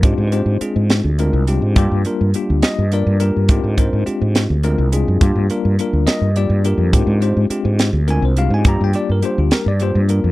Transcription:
<<
  \new Staff \with { instrumentName = "Tine electric piano" } { \time 6/8 \key f \dorian \tempo 4. = 70 << { r8 <b' c''>8 r2 | r4. ees''8 d''8 bes'8~ | bes'8 c''8 r2 | r4. ees''8 d''8 bes'8~ |
bes'8 c''8 r4 aes''16 c''16 f''16 aes''16 | bes''16 g''16 d''16 bes'16 c''16 f'16 bes'16 d''16 c''8 r8 | } \\ { <aes c' d' f' g'>8 <aes c' d' f' g'>8 <aes c' d' f' aes'>4 <aes c' d' f' bes'>8 <aes c' d' f' g'>8 | <g bes d' f' g'>8 <g bes d' f' bes'>8 <g bes d' f' g'>4 <g bes d' f' bes'>8 <g bes d' f' g'>8 | <aes c' d' f' g'>8 <aes c' d' f' bes'>8 <aes c' d' f' g'>4 <aes c' d' f' bes'>8 <aes c' d' f' aes'>8 | <g bes d' f' g'>8 <g bes d' f' bes'>8 <g bes d' f' bes'>4 <g bes d' f' g'>8 <g bes d' f' g'>8 |
<aes c' d' f' g'>8 <aes c' d' f' g'>8 <aes c' d' f' g'>4 <aes c' d' f' bes'>8 <aes c' d' f' g'>8 | <g bes d' f' g'>8 <g bes d' f' g'>8 <g bes d' f' g'>4 <g bes d' f' g'>8 <g bes d' f' bes'>8 | } >> }
  \new Staff \with { instrumentName = "Fretless electric bass" } { \clef bass \time 6/8 \key f \dorian aes,16 aes,8 aes,16 r16 aes,8 d,8 c,8 aes,16 | g,16 g,16 r16 g,16 r16 d,16 r16 g,8 g,8 g,16 | aes,16 aes,8 aes,16 r16 aes,8 d,8 c,8 ges,16 | g,16 g,16 r16 g,16 r16 d,16 r16 g,8 g,8 f,16 |
aes,16 aes,8 aes,16 r16 aes,8 d,8 c,8 aes,16 | g,16 g,16 r16 g,16 r16 d,16 r16 g,8 g,8 f,16 | }
  \new DrumStaff \with { instrumentName = "Drums" } \drummode { \time 6/8 <hh bd>8 hh8 hh8 <hh sn>8 hh8 hh8 | <hh bd>8 hh8 hh8 <hh sn>8 hh8 hh8 | <hh bd>8 <hh bd>8 hh8 <hh sn>8 hh8 hh8 | <hh bd>8 hh8 hh8 <hh sn>8 hh8 hh8 |
<hh bd>8 hh8 hh8 <hh sn>8 hh8 hh8 | <hh bd>8 hh8 hh8 <hh sn>8 hh8 hh8 | }
>>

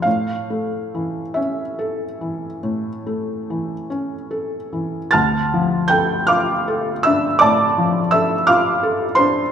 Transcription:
<<
  \new Staff \with { instrumentName = "Felt piano" } { \time 12/8 \key d \minor \tempo 4. = 50 f''4. e''2. r4. | <a'' f''' a'''>4 <g'' g'''>8 <f'' d''' f'''>4 <e'' e'''>8 <d'' a'' d'''>4 <e'' e'''>8 <f'' d''' f'''>4 <c'' c'''>8 | }
  \new Staff \with { instrumentName = "Felt piano" } { \time 12/8 \key d \minor a,8 a8 e8 cis'8 a'8 e8 a,8 a8 e8 cis'8 a'8 e8 | d,8 f8 a'8 f'8 a'8 d'8 a,8 f8 a'8 f'8 a'8 d'8 | }
>>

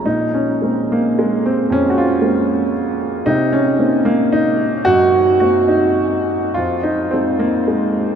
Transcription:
<<
  \new Staff \with { instrumentName = "Grand piano" } { \time 3/4 \key bes \minor \tempo 4 = 112 ees'8 des'8 r8 bes8 aes8 c'8 | des'16. ges'32 f'2 r8 | ees'8 des'8 r8 bes8 ees'4 | ges'4 ges'8 ees'4 r8 |
f'8 ees'8 c'8 bes8 aes8 r8 | }
  \new Staff \with { instrumentName = "Grand piano" } { \time 3/4 \key bes \minor bes,4 <aes bes c' des'>4 r4 | f,4 <aes bes c' des'>4 r4 | c4 <bes c' ees'>4 r4 | ges,4 <bes c' ees'>4 r4 |
f,4 <f aes ees'>4 r4 | }
>>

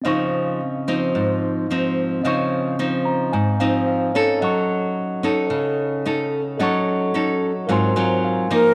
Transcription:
<<
  \new Staff \with { instrumentName = "Tine electric piano" } { \time 4/4 \key des \major \tempo 4 = 110 << { <c' ees'' f'' des'''>1 | <c' ees'' f'' des'''>1 | <a' ees'' ges'' des'''>1 | <a' ees'' ges'' des'''>2 <ges' bes' f'' aes'' c'''>2 | } \\ { r1 | r4. bes''8 aes''8 f''8 f''8 des''8 | r1 | r2 r8 aes''8 f''4 | } >> }
  \new Staff \with { instrumentName = "Alto flute" } { \time 4/4 \key des \major r1 | r1 | r1 | r2. r8 bes'8 | }
  \new Staff \with { instrumentName = "Nylon-string guitar" } { \time 4/4 \key des \major << { <f c' ees'>4 r8 <f c' ees'>4. <f c' ees'>4 | <f c' ees'>4 <f c' ees'>4 r8 <f c' ees'>4 <des' ees' a'>8~ | <des' ees' a'>4. <des' ees' a'>4. <des' ees' a'>8 r8 | <des' ees' a'>4 <des' ees' a'>8 r8 <ges c' f'>8 <ges c' f'>4 <f bes ees'>8 | } \\ { des2 aes,2 | des2 aes,2 | ges2 des2 | ges2 aes,2 | } >> }
>>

